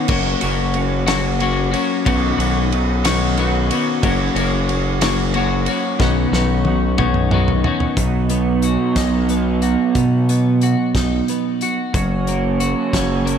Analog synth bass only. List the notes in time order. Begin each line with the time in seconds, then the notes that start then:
0.09 F#1
0.43 F#1
2.06 B1
2.38 B1
4.03 F#1
4.35 F#1
6.00 B1
6.32 B1
7.97 B1
8.96 B1
9.95 B2
10.94 B1
11.94 F#1
12.93 F#1